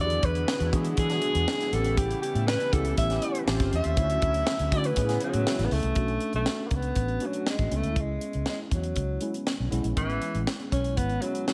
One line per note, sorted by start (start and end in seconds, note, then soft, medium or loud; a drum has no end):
0.00 0.18 E2 loud
0.00 1.71 D3 medium
0.00 1.71 F#3 medium
0.00 1.71 G#3 medium
0.00 0.43 B3 medium
0.00 1.68 B3 medium
0.00 0.44 D4 medium
0.00 1.71 E4 medium
0.00 0.44 F#4 medium
0.00 0.26 D5 loud
0.05 0.47 G#4 medium
0.10 closed hi-hat medium
0.23 0.43 E2 loud
0.23 0.72 B4 medium
0.23 kick loud
0.23 closed hi-hat medium
0.35 closed hi-hat medium
0.48 snare loud
0.60 0.70 E2 loud
0.60 closed hi-hat medium
0.72 0.93 E3 medium
0.72 0.95 B3 medium
0.72 0.95 D4 medium
0.72 0.95 F#4 medium
0.72 0.96 G#4 medium
0.72 kick medium
0.72 closed hi-hat medium
0.85 closed hi-hat medium
0.97 1.18 E3 loud
0.97 1.75 G#4 loud
0.97 kick medium
0.97 closed hi-hat medium
1.10 1.63 B3 medium
1.10 1.63 D4 medium
1.10 1.63 F#4 medium
1.10 1.63 G#4 medium
1.10 snare soft
1.10 closed hi-hat soft
1.22 closed hi-hat medium
1.35 1.45 E2 medium
1.35 closed hi-hat medium
1.48 snare loud
1.60 snare soft
1.60 closed hi-hat medium
1.72 2.13 A1 loud
1.72 3.95 C#3 medium
1.72 3.46 E3 medium
1.72 3.95 G3 medium
1.72 3.46 A3 medium
1.72 2.53 B3 medium
1.72 2.53 C#4 medium
1.72 3.46 E4 medium
1.72 2.53 E4 medium
1.72 2.53 G4 medium
1.72 1.99 A4 medium
1.72 closed hi-hat medium
1.84 closed hi-hat medium
1.97 2.21 G4 medium
1.97 kick loud
1.97 closed hi-hat medium
2.11 closed hi-hat medium
2.22 2.48 G4 medium
2.22 closed hi-hat medium
2.35 2.55 A2 loud
2.35 closed hi-hat soft
2.47 2.75 B4 loud
2.47 snare loud
2.60 closed hi-hat medium
2.72 2.93 C#2 medium
2.72 2.95 B3 medium
2.72 2.95 C#4 medium
2.72 2.95 E4 medium
2.72 2.95 G4 medium
2.72 2.98 A4 medium
2.72 kick loud
2.72 closed hi-hat medium
2.85 closed hi-hat medium
2.97 3.18 A1 loud
2.97 3.44 E5 loud
2.97 kick medium
2.97 closed hi-hat medium
3.10 3.47 B3 medium
3.10 3.47 C#4 medium
3.10 3.48 E4 medium
3.10 3.47 G4 medium
3.10 snare soft
3.10 closed hi-hat soft
3.22 closed hi-hat medium
3.35 closed hi-hat medium
3.47 3.57 A1 loud
3.47 5.94 A3 medium
3.47 3.87 C4 medium
3.47 3.87 C#4 medium
3.47 3.97 F4 medium
3.47 3.88 F4 medium
3.47 3.88 G4 medium
3.47 3.96 C5 medium
3.47 snare loud
3.60 3.70 G1 medium
3.60 kick loud
3.60 snare soft
3.60 closed hi-hat medium
3.73 3.82 E2 medium
3.73 4.75 E5 loud
3.73 closed hi-hat medium
3.84 3.95 D#2 medium
3.84 closed hi-hat medium
3.95 4.17 D2 loud
3.95 4.95 D3 medium
3.95 4.95 F#3 medium
3.95 4.42 A3 medium
3.95 4.95 C#4 medium
3.95 4.43 C#4 medium
3.95 5.94 E4 medium
3.95 4.43 E4 medium
3.95 4.43 F#4 medium
3.95 kick loud
3.95 closed hi-hat medium
4.10 closed hi-hat medium
4.22 4.42 D2 loud
4.22 kick loud
4.22 closed hi-hat medium
4.34 closed hi-hat medium
4.47 snare loud
4.59 4.70 D2 loud
4.59 closed hi-hat medium
4.72 4.92 D3 medium
4.72 4.94 A3 medium
4.72 4.95 C#4 medium
4.72 4.95 E4 medium
4.72 4.95 F#4 medium
4.72 4.88 D5 loud
4.72 kick medium
4.72 closed hi-hat medium
4.84 5.23 B4 medium
4.84 closed hi-hat medium
4.96 5.17 A2 loud
4.96 5.96 C#3 medium
4.96 5.96 G#3 medium
4.96 5.07 B3 medium
4.96 5.96 B3 medium
4.96 5.07 C#4 medium
4.96 5.07 E4 medium
4.96 5.07 G#4 medium
4.96 kick medium
4.96 closed hi-hat medium
5.08 5.62 B3 medium
5.08 5.62 C#4 medium
5.08 5.62 E4 medium
5.08 5.62 G#4 medium
5.08 snare soft
5.08 closed hi-hat medium
5.21 5.67 F#3 medium
5.21 closed hi-hat medium
5.34 5.44 A2 medium
5.34 closed hi-hat medium
5.47 5.94 E5 medium
5.47 snare loud
5.59 5.69 A1 medium
5.59 snare soft
5.59 closed hi-hat medium
5.65 5.74 B3 medium
5.71 5.82 C#2 medium
5.71 6.35 A3 loud
5.71 open hi-hat medium
5.83 5.94 C2 medium
5.83 closed hi-hat medium
5.95 6.17 B1 medium
5.95 6.57 A3 medium
5.95 6.57 C#4 soft
5.95 6.58 D4 medium
5.95 6.58 F#4 medium
5.95 kick medium
5.95 closed hi-hat medium
6.08 closed hi-hat soft
6.20 closed hi-hat medium
6.33 6.44 B1 medium
6.33 6.68 A3 medium
6.33 closed hi-hat soft
6.46 snare loud
6.67 6.77 A#3 medium
6.67 closed hi-hat medium
6.71 6.92 C#2 medium
6.71 kick medium
6.75 7.27 B3 medium
6.82 closed hi-hat soft
6.96 7.17 A1 medium
6.96 kick medium
6.96 closed hi-hat medium
7.08 closed hi-hat soft
7.20 7.51 A3 medium
7.20 7.52 C#4 medium
7.20 7.52 D4 medium
7.20 7.52 F#4 medium
7.20 closed hi-hat medium
7.26 7.49 F#3 medium
7.33 closed hi-hat medium
7.47 7.77 G#3 medium
7.47 snare medium
7.59 7.69 A1 medium
7.59 kick medium
7.59 closed hi-hat soft
7.70 7.82 C#2 medium
7.70 8.51 G#3 medium
7.70 8.51 B3 medium
7.70 8.51 C#4 medium
7.70 8.52 E4 medium
7.70 closed hi-hat medium
7.76 8.02 A3 medium
7.84 7.94 D2 medium
7.84 closed hi-hat soft
7.96 8.17 C#2 medium
7.96 kick medium
7.96 closed hi-hat medium
8.00 8.48 G#3 medium
8.21 closed hi-hat medium
8.33 8.45 C#2 medium
8.33 closed hi-hat soft
8.46 8.60 G#3 medium
8.46 snare medium
8.71 8.92 E2 medium
8.71 9.44 F#3 medium
8.71 kick medium
8.71 closed hi-hat medium
8.84 closed hi-hat soft
8.96 9.17 C#2 medium
8.96 kick medium
8.96 closed hi-hat medium
9.21 9.52 G#3 medium
9.21 9.52 B3 medium
9.21 9.52 C#4 medium
9.21 9.52 E4 medium
9.21 closed hi-hat medium
9.34 closed hi-hat soft
9.47 snare medium
9.60 9.70 B1 medium
9.71 9.82 B1 medium
9.71 9.87 G#3 medium
9.71 9.87 B3 medium
9.71 9.87 C#4 medium
9.71 9.87 E4 medium
9.71 closed hi-hat medium
9.84 9.94 A#1 medium
9.84 closed hi-hat soft
9.96 10.17 A1 medium
9.96 10.44 E3 medium
9.96 10.57 G#3 medium
9.96 10.57 B3 medium
9.96 10.57 C#4 medium
9.96 10.58 E4 medium
9.96 kick medium
9.96 closed hi-hat medium
10.10 closed hi-hat soft
10.22 closed hi-hat medium
10.35 10.45 A1 medium
10.35 closed hi-hat soft
10.47 snare loud
10.60 closed hi-hat soft
10.72 10.99 B1 medium
10.72 10.99 C#4 medium
10.72 kick medium
10.72 closed hi-hat medium
10.84 closed hi-hat soft
10.97 11.17 G#1 medium
10.97 11.23 B3 medium
10.97 kick medium
10.97 closed hi-hat medium
11.10 closed hi-hat soft
11.22 11.47 F#3 medium
11.22 11.52 G#3 medium
11.22 11.53 B3 medium
11.22 11.53 C#4 medium
11.22 11.53 E4 medium
11.22 closed hi-hat medium
11.35 closed hi-hat medium
11.47 11.53 F#3 medium
11.47 snare medium